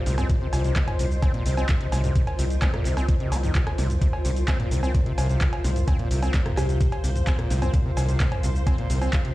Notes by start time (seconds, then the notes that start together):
Already playing: F4 A#4 C5 D#5
0.06 C2 C3, snare, open hi-hat, shaker
0.18 C4, closed hi-hat, mid tom, cowbell, shaker
0.29 A#2, kick, closed hi-hat, shaker
0.41 C3
0.53 C2 C3, open hi-hat, cowbell, shaker
0.64 C3, closed hi-hat, shaker
0.76 C3, kick, snare, clap, closed hi-hat, shaker
0.88 closed hi-hat, mid tom, cowbell
0.99 C2 C3, open hi-hat, shaker
1.11 shaker
1.22 C4, kick, closed hi-hat, cowbell, shaker
1.34 A#2, closed hi-hat
1.46 C2 C3, open hi-hat, shaker
1.57 C4, closed hi-hat, cowbell, shaker
1.69 A#2, kick, clap, closed hi-hat, shaker
1.81 C3, closed hi-hat
1.92 C2 C3, snare, open hi-hat, cowbell, shaker
2.04 C3, closed hi-hat, mid tom, shaker
2.15 C3, kick, closed hi-hat, shaker
2.27 closed hi-hat, cowbell
2.39 C2 C3, open hi-hat, shaker
2.50 closed hi-hat, shaker
2.62 C4, kick, snare, clap, closed hi-hat, cowbell, shaker
2.74 A#2, cross-stick, closed hi-hat, mid tom
2.85 C2 C3, clap, open hi-hat, shaker
2.97 C4, closed hi-hat, cowbell, shaker
3.08 A#2, kick, closed hi-hat, shaker
3.20 C3, closed hi-hat
3.32 C2 C4, open hi-hat, cowbell, shaker
3.43 D#3, closed hi-hat, mid tom, shaker
3.55 C2, kick, clap, closed hi-hat, shaker
3.67 C3, cross-stick, closed hi-hat, cowbell
3.78 C2 C3, snare, open hi-hat, shaker
3.90 closed hi-hat, mid tom, shaker
4.01 C3 C5, kick, closed hi-hat, shaker
4.13 cowbell
4.25 C2 C3, open hi-hat, shaker
4.32 F5
4.36 closed hi-hat, shaker
4.48 C4, kick, snare, clap, closed hi-hat, cowbell, shaker
4.60 A#2, closed hi-hat, mid tom
4.71 C2 C3, open hi-hat, shaker
4.83 C4, cowbell, shaker
4.95 A#2, kick, closed hi-hat, shaker
5.06 C3, closed hi-hat
5.18 C2 C3, open hi-hat, cowbell, shaker
5.29 C3, closed hi-hat, shaker
5.41 C3, kick, clap, closed hi-hat, shaker
5.53 closed hi-hat, cowbell
5.64 C2 C3, snare, open hi-hat, shaker
5.76 closed hi-hat, mid tom, shaker
5.88 C4, kick, closed hi-hat, cowbell, shaker
5.99 A#2, closed hi-hat
6.11 C2 C3, open hi-hat, shaker
6.22 C4, closed hi-hat, cowbell, shaker
6.34 A#2, kick, snare, clap, closed hi-hat, shaker
6.46 C3, cross-stick, closed hi-hat, mid tom
6.57 C2 C3 G4, clap, open hi-hat, cowbell, shaker
6.69 C3, closed hi-hat, shaker
6.81 C3, kick, closed hi-hat, shaker
6.92 closed hi-hat, cowbell
7.04 C2 C3, open hi-hat, shaker
7.16 closed hi-hat, mid tom, shaker
7.27 C4, kick, clap, closed hi-hat, cowbell, shaker
7.39 A#2, cross-stick, closed hi-hat
7.50 C2 C3, snare, open hi-hat, shaker
7.62 C4, closed hi-hat, mid tom, cowbell, shaker
7.74 A#2, kick, closed hi-hat, shaker
7.85 C3
7.97 C2 C3, open hi-hat, cowbell, shaker
8.09 C3, closed hi-hat, shaker
8.20 C3, kick, snare, clap, closed hi-hat, shaker
8.32 closed hi-hat, mid tom, cowbell
8.43 C2 C3, open hi-hat, shaker
8.56 shaker
8.67 C4, kick, closed hi-hat, cowbell, shaker
8.78 A#2, closed hi-hat
8.90 C2 C3, open hi-hat, shaker
9.02 C4, closed hi-hat, cowbell, shaker
9.13 A#2, kick, clap, closed hi-hat, shaker
9.25 C3, closed hi-hat